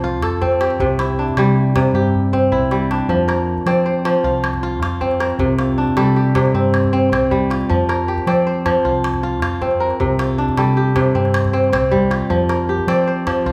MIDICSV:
0, 0, Header, 1, 4, 480
1, 0, Start_track
1, 0, Key_signature, -1, "major"
1, 0, Tempo, 383632
1, 998, Time_signature, 12, 3, 24, 8
1, 16917, End_track
2, 0, Start_track
2, 0, Title_t, "Kora"
2, 0, Program_c, 0, 46
2, 0, Note_on_c, 0, 53, 75
2, 0, Note_on_c, 0, 60, 80
2, 0, Note_on_c, 0, 67, 68
2, 0, Note_on_c, 0, 72, 68
2, 0, Note_on_c, 0, 74, 58
2, 47, Note_on_c, 0, 65, 78
2, 286, Note_on_c, 0, 69, 68
2, 378, Note_off_c, 0, 67, 0
2, 476, Note_off_c, 0, 74, 0
2, 515, Note_off_c, 0, 60, 0
2, 520, Note_on_c, 0, 60, 81
2, 759, Note_on_c, 0, 67, 60
2, 1005, Note_on_c, 0, 48, 80
2, 1053, Note_off_c, 0, 72, 0
2, 1061, Note_off_c, 0, 53, 0
2, 1244, Note_on_c, 0, 64, 67
2, 1319, Note_off_c, 0, 65, 0
2, 1487, Note_on_c, 0, 62, 58
2, 1728, Note_on_c, 0, 55, 81
2, 1935, Note_off_c, 0, 69, 0
2, 2184, Note_off_c, 0, 48, 0
2, 2199, Note_on_c, 0, 48, 76
2, 2431, Note_off_c, 0, 67, 0
2, 2436, Note_on_c, 0, 67, 71
2, 2772, Note_off_c, 0, 60, 0
2, 2916, Note_on_c, 0, 60, 83
2, 3147, Note_off_c, 0, 64, 0
2, 3152, Note_on_c, 0, 64, 71
2, 3383, Note_off_c, 0, 55, 0
2, 3398, Note_on_c, 0, 55, 77
2, 3589, Note_off_c, 0, 62, 0
2, 3639, Note_on_c, 0, 62, 63
2, 3869, Note_on_c, 0, 53, 77
2, 3937, Note_off_c, 0, 48, 0
2, 3937, Note_off_c, 0, 55, 0
2, 3944, Note_off_c, 0, 64, 0
2, 4102, Note_on_c, 0, 70, 60
2, 4203, Note_off_c, 0, 67, 0
2, 4584, Note_off_c, 0, 60, 0
2, 4589, Note_on_c, 0, 60, 77
2, 4589, Note_on_c, 0, 74, 61
2, 4826, Note_on_c, 0, 72, 60
2, 5055, Note_off_c, 0, 53, 0
2, 5070, Note_on_c, 0, 53, 81
2, 5308, Note_on_c, 0, 65, 67
2, 5695, Note_off_c, 0, 70, 0
2, 5740, Note_off_c, 0, 62, 0
2, 5788, Note_off_c, 0, 65, 0
2, 5793, Note_on_c, 0, 65, 80
2, 5975, Note_off_c, 0, 74, 0
2, 6029, Note_off_c, 0, 65, 0
2, 6034, Note_on_c, 0, 65, 65
2, 6262, Note_off_c, 0, 60, 0
2, 6267, Note_on_c, 0, 60, 75
2, 6312, Note_off_c, 0, 72, 0
2, 6507, Note_on_c, 0, 70, 59
2, 6750, Note_on_c, 0, 48, 74
2, 6816, Note_off_c, 0, 53, 0
2, 6985, Note_off_c, 0, 65, 0
2, 6990, Note_on_c, 0, 65, 57
2, 7230, Note_on_c, 0, 62, 60
2, 7468, Note_on_c, 0, 55, 78
2, 7469, Note_on_c, 0, 69, 67
2, 7544, Note_off_c, 0, 70, 0
2, 7710, Note_on_c, 0, 67, 57
2, 7937, Note_off_c, 0, 48, 0
2, 7952, Note_on_c, 0, 48, 72
2, 8185, Note_off_c, 0, 60, 0
2, 8190, Note_on_c, 0, 60, 68
2, 8664, Note_off_c, 0, 60, 0
2, 8669, Note_on_c, 0, 60, 76
2, 8884, Note_off_c, 0, 65, 0
2, 8907, Note_off_c, 0, 60, 0
2, 8912, Note_on_c, 0, 60, 66
2, 9117, Note_off_c, 0, 69, 0
2, 9135, Note_off_c, 0, 55, 0
2, 9149, Note_on_c, 0, 55, 77
2, 9331, Note_off_c, 0, 62, 0
2, 9389, Note_on_c, 0, 65, 67
2, 9477, Note_off_c, 0, 67, 0
2, 9628, Note_on_c, 0, 53, 79
2, 9696, Note_off_c, 0, 48, 0
2, 9696, Note_off_c, 0, 55, 0
2, 9869, Note_on_c, 0, 70, 71
2, 10112, Note_on_c, 0, 67, 65
2, 10349, Note_off_c, 0, 60, 0
2, 10352, Note_on_c, 0, 74, 66
2, 10354, Note_on_c, 0, 60, 78
2, 10594, Note_on_c, 0, 72, 60
2, 10815, Note_off_c, 0, 53, 0
2, 10830, Note_on_c, 0, 53, 83
2, 11065, Note_off_c, 0, 65, 0
2, 11070, Note_on_c, 0, 65, 67
2, 11462, Note_off_c, 0, 70, 0
2, 11547, Note_off_c, 0, 65, 0
2, 11552, Note_on_c, 0, 65, 76
2, 11738, Note_off_c, 0, 74, 0
2, 11784, Note_off_c, 0, 65, 0
2, 11789, Note_on_c, 0, 65, 69
2, 11879, Note_off_c, 0, 67, 0
2, 12026, Note_off_c, 0, 60, 0
2, 12031, Note_on_c, 0, 60, 71
2, 12080, Note_off_c, 0, 72, 0
2, 12265, Note_on_c, 0, 70, 65
2, 12510, Note_on_c, 0, 48, 75
2, 12577, Note_off_c, 0, 53, 0
2, 12744, Note_off_c, 0, 65, 0
2, 12749, Note_on_c, 0, 65, 60
2, 12992, Note_on_c, 0, 62, 64
2, 13234, Note_on_c, 0, 55, 73
2, 13236, Note_on_c, 0, 69, 58
2, 13311, Note_off_c, 0, 70, 0
2, 13473, Note_on_c, 0, 67, 60
2, 13694, Note_off_c, 0, 48, 0
2, 13709, Note_on_c, 0, 48, 75
2, 13946, Note_off_c, 0, 60, 0
2, 13951, Note_on_c, 0, 60, 69
2, 14426, Note_off_c, 0, 60, 0
2, 14431, Note_on_c, 0, 60, 75
2, 14643, Note_off_c, 0, 65, 0
2, 14665, Note_off_c, 0, 60, 0
2, 14670, Note_on_c, 0, 60, 69
2, 14884, Note_off_c, 0, 69, 0
2, 14892, Note_off_c, 0, 55, 0
2, 14907, Note_on_c, 0, 55, 77
2, 15093, Note_off_c, 0, 62, 0
2, 15147, Note_on_c, 0, 65, 64
2, 15240, Note_off_c, 0, 67, 0
2, 15390, Note_on_c, 0, 53, 73
2, 15459, Note_off_c, 0, 48, 0
2, 15459, Note_off_c, 0, 55, 0
2, 15633, Note_on_c, 0, 70, 65
2, 15878, Note_on_c, 0, 67, 66
2, 16112, Note_off_c, 0, 60, 0
2, 16117, Note_on_c, 0, 60, 75
2, 16119, Note_on_c, 0, 74, 68
2, 16359, Note_on_c, 0, 72, 59
2, 16586, Note_off_c, 0, 53, 0
2, 16601, Note_on_c, 0, 53, 72
2, 16839, Note_off_c, 0, 65, 0
2, 16844, Note_on_c, 0, 65, 73
2, 16917, Note_off_c, 0, 53, 0
2, 16917, Note_off_c, 0, 60, 0
2, 16917, Note_off_c, 0, 65, 0
2, 16917, Note_off_c, 0, 67, 0
2, 16917, Note_off_c, 0, 70, 0
2, 16917, Note_off_c, 0, 72, 0
2, 16917, Note_off_c, 0, 74, 0
2, 16917, End_track
3, 0, Start_track
3, 0, Title_t, "Fingered electric bass"
3, 0, Program_c, 1, 33
3, 0, Note_on_c, 1, 36, 88
3, 277, Note_off_c, 1, 36, 0
3, 277, Note_on_c, 1, 41, 92
3, 892, Note_off_c, 1, 41, 0
3, 992, Note_on_c, 1, 36, 88
3, 1608, Note_off_c, 1, 36, 0
3, 1711, Note_on_c, 1, 48, 94
3, 2327, Note_off_c, 1, 48, 0
3, 2422, Note_on_c, 1, 43, 91
3, 3149, Note_on_c, 1, 36, 93
3, 3167, Note_off_c, 1, 43, 0
3, 3765, Note_off_c, 1, 36, 0
3, 3862, Note_on_c, 1, 41, 90
3, 4482, Note_off_c, 1, 41, 0
3, 4577, Note_on_c, 1, 53, 77
3, 5199, Note_off_c, 1, 53, 0
3, 5301, Note_on_c, 1, 36, 83
3, 6022, Note_off_c, 1, 36, 0
3, 6022, Note_on_c, 1, 41, 95
3, 6642, Note_off_c, 1, 41, 0
3, 6737, Note_on_c, 1, 36, 93
3, 7359, Note_off_c, 1, 36, 0
3, 7462, Note_on_c, 1, 48, 90
3, 8081, Note_off_c, 1, 48, 0
3, 8180, Note_on_c, 1, 43, 86
3, 8904, Note_on_c, 1, 36, 99
3, 8923, Note_off_c, 1, 43, 0
3, 9523, Note_off_c, 1, 36, 0
3, 9633, Note_on_c, 1, 41, 85
3, 10248, Note_off_c, 1, 41, 0
3, 10343, Note_on_c, 1, 53, 92
3, 10962, Note_off_c, 1, 53, 0
3, 11069, Note_on_c, 1, 36, 77
3, 11785, Note_off_c, 1, 36, 0
3, 11785, Note_on_c, 1, 41, 88
3, 12404, Note_off_c, 1, 41, 0
3, 12509, Note_on_c, 1, 36, 80
3, 13127, Note_off_c, 1, 36, 0
3, 13228, Note_on_c, 1, 48, 87
3, 13846, Note_off_c, 1, 48, 0
3, 13944, Note_on_c, 1, 43, 82
3, 14668, Note_on_c, 1, 36, 90
3, 14687, Note_off_c, 1, 43, 0
3, 15287, Note_off_c, 1, 36, 0
3, 15391, Note_on_c, 1, 41, 85
3, 16009, Note_off_c, 1, 41, 0
3, 16105, Note_on_c, 1, 53, 81
3, 16726, Note_off_c, 1, 53, 0
3, 16836, Note_on_c, 1, 36, 84
3, 16917, Note_off_c, 1, 36, 0
3, 16917, End_track
4, 0, Start_track
4, 0, Title_t, "Calabash"
4, 281, Note_on_c, 9, 38, 62
4, 407, Note_off_c, 9, 38, 0
4, 519, Note_on_c, 9, 36, 64
4, 645, Note_off_c, 9, 36, 0
4, 647, Note_on_c, 9, 38, 19
4, 761, Note_off_c, 9, 38, 0
4, 761, Note_on_c, 9, 38, 61
4, 881, Note_off_c, 9, 38, 0
4, 881, Note_on_c, 9, 38, 21
4, 999, Note_on_c, 9, 36, 66
4, 1006, Note_off_c, 9, 38, 0
4, 1124, Note_off_c, 9, 36, 0
4, 1239, Note_on_c, 9, 38, 67
4, 1364, Note_off_c, 9, 38, 0
4, 1605, Note_on_c, 9, 36, 48
4, 1716, Note_on_c, 9, 38, 65
4, 1730, Note_off_c, 9, 36, 0
4, 1841, Note_off_c, 9, 38, 0
4, 2198, Note_on_c, 9, 36, 69
4, 2198, Note_on_c, 9, 38, 68
4, 2323, Note_off_c, 9, 36, 0
4, 2323, Note_off_c, 9, 38, 0
4, 2680, Note_on_c, 9, 36, 42
4, 2806, Note_off_c, 9, 36, 0
4, 2917, Note_on_c, 9, 36, 40
4, 3042, Note_off_c, 9, 36, 0
4, 3158, Note_on_c, 9, 36, 48
4, 3284, Note_off_c, 9, 36, 0
4, 3395, Note_on_c, 9, 38, 49
4, 3520, Note_off_c, 9, 38, 0
4, 3639, Note_on_c, 9, 38, 54
4, 3764, Note_off_c, 9, 38, 0
4, 3878, Note_on_c, 9, 36, 56
4, 4003, Note_off_c, 9, 36, 0
4, 4112, Note_on_c, 9, 38, 53
4, 4237, Note_off_c, 9, 38, 0
4, 4476, Note_on_c, 9, 36, 43
4, 4587, Note_on_c, 9, 38, 53
4, 4602, Note_off_c, 9, 36, 0
4, 4712, Note_off_c, 9, 38, 0
4, 5071, Note_on_c, 9, 38, 67
4, 5189, Note_off_c, 9, 38, 0
4, 5189, Note_on_c, 9, 38, 17
4, 5314, Note_off_c, 9, 38, 0
4, 5552, Note_on_c, 9, 38, 67
4, 5672, Note_off_c, 9, 38, 0
4, 5672, Note_on_c, 9, 36, 47
4, 5672, Note_on_c, 9, 38, 20
4, 5797, Note_off_c, 9, 36, 0
4, 5797, Note_off_c, 9, 38, 0
4, 6039, Note_on_c, 9, 38, 68
4, 6164, Note_off_c, 9, 38, 0
4, 6276, Note_on_c, 9, 36, 62
4, 6397, Note_on_c, 9, 38, 20
4, 6401, Note_off_c, 9, 36, 0
4, 6511, Note_off_c, 9, 38, 0
4, 6511, Note_on_c, 9, 38, 58
4, 6634, Note_off_c, 9, 38, 0
4, 6634, Note_on_c, 9, 38, 19
4, 6747, Note_on_c, 9, 36, 75
4, 6759, Note_off_c, 9, 38, 0
4, 6872, Note_off_c, 9, 36, 0
4, 6988, Note_on_c, 9, 38, 59
4, 7114, Note_off_c, 9, 38, 0
4, 7352, Note_on_c, 9, 36, 50
4, 7467, Note_on_c, 9, 38, 62
4, 7477, Note_off_c, 9, 36, 0
4, 7592, Note_off_c, 9, 38, 0
4, 7947, Note_on_c, 9, 36, 65
4, 7947, Note_on_c, 9, 38, 69
4, 8072, Note_off_c, 9, 36, 0
4, 8072, Note_off_c, 9, 38, 0
4, 8077, Note_on_c, 9, 38, 20
4, 8202, Note_off_c, 9, 38, 0
4, 8430, Note_on_c, 9, 38, 61
4, 8555, Note_off_c, 9, 38, 0
4, 8556, Note_on_c, 9, 36, 48
4, 8556, Note_on_c, 9, 38, 22
4, 8681, Note_off_c, 9, 36, 0
4, 8681, Note_off_c, 9, 38, 0
4, 8921, Note_on_c, 9, 38, 64
4, 9046, Note_off_c, 9, 38, 0
4, 9155, Note_on_c, 9, 36, 59
4, 9280, Note_off_c, 9, 36, 0
4, 9399, Note_on_c, 9, 38, 58
4, 9521, Note_off_c, 9, 38, 0
4, 9521, Note_on_c, 9, 38, 20
4, 9642, Note_on_c, 9, 36, 65
4, 9646, Note_off_c, 9, 38, 0
4, 9767, Note_off_c, 9, 36, 0
4, 9876, Note_on_c, 9, 38, 53
4, 10002, Note_off_c, 9, 38, 0
4, 10232, Note_on_c, 9, 36, 48
4, 10352, Note_on_c, 9, 38, 52
4, 10357, Note_off_c, 9, 36, 0
4, 10478, Note_off_c, 9, 38, 0
4, 10833, Note_on_c, 9, 36, 64
4, 10833, Note_on_c, 9, 38, 60
4, 10956, Note_off_c, 9, 38, 0
4, 10956, Note_on_c, 9, 38, 19
4, 10958, Note_off_c, 9, 36, 0
4, 11081, Note_off_c, 9, 38, 0
4, 11315, Note_on_c, 9, 38, 66
4, 11431, Note_off_c, 9, 38, 0
4, 11431, Note_on_c, 9, 36, 49
4, 11431, Note_on_c, 9, 38, 23
4, 11556, Note_off_c, 9, 36, 0
4, 11556, Note_off_c, 9, 38, 0
4, 11791, Note_on_c, 9, 38, 68
4, 11916, Note_off_c, 9, 38, 0
4, 12032, Note_on_c, 9, 36, 67
4, 12152, Note_on_c, 9, 38, 20
4, 12157, Note_off_c, 9, 36, 0
4, 12277, Note_off_c, 9, 38, 0
4, 12392, Note_on_c, 9, 38, 22
4, 12514, Note_on_c, 9, 36, 73
4, 12517, Note_off_c, 9, 38, 0
4, 12640, Note_off_c, 9, 36, 0
4, 12754, Note_on_c, 9, 38, 64
4, 12879, Note_off_c, 9, 38, 0
4, 13118, Note_on_c, 9, 36, 49
4, 13231, Note_on_c, 9, 38, 64
4, 13243, Note_off_c, 9, 36, 0
4, 13356, Note_off_c, 9, 38, 0
4, 13710, Note_on_c, 9, 36, 68
4, 13710, Note_on_c, 9, 38, 69
4, 13835, Note_off_c, 9, 36, 0
4, 13835, Note_off_c, 9, 38, 0
4, 14078, Note_on_c, 9, 38, 22
4, 14191, Note_off_c, 9, 38, 0
4, 14191, Note_on_c, 9, 38, 75
4, 14317, Note_off_c, 9, 38, 0
4, 14320, Note_on_c, 9, 36, 52
4, 14320, Note_on_c, 9, 38, 22
4, 14442, Note_off_c, 9, 38, 0
4, 14442, Note_on_c, 9, 38, 20
4, 14445, Note_off_c, 9, 36, 0
4, 14562, Note_off_c, 9, 38, 0
4, 14562, Note_on_c, 9, 38, 22
4, 14680, Note_off_c, 9, 38, 0
4, 14680, Note_on_c, 9, 38, 69
4, 14805, Note_off_c, 9, 38, 0
4, 14914, Note_on_c, 9, 36, 61
4, 14914, Note_on_c, 9, 38, 19
4, 15039, Note_off_c, 9, 36, 0
4, 15039, Note_off_c, 9, 38, 0
4, 15155, Note_on_c, 9, 38, 56
4, 15281, Note_off_c, 9, 38, 0
4, 15397, Note_on_c, 9, 36, 59
4, 15522, Note_off_c, 9, 36, 0
4, 15633, Note_on_c, 9, 38, 59
4, 15758, Note_off_c, 9, 38, 0
4, 15996, Note_on_c, 9, 36, 45
4, 16118, Note_on_c, 9, 38, 60
4, 16121, Note_off_c, 9, 36, 0
4, 16243, Note_off_c, 9, 38, 0
4, 16601, Note_on_c, 9, 36, 68
4, 16601, Note_on_c, 9, 38, 67
4, 16717, Note_off_c, 9, 38, 0
4, 16717, Note_on_c, 9, 38, 19
4, 16726, Note_off_c, 9, 36, 0
4, 16842, Note_off_c, 9, 38, 0
4, 16917, End_track
0, 0, End_of_file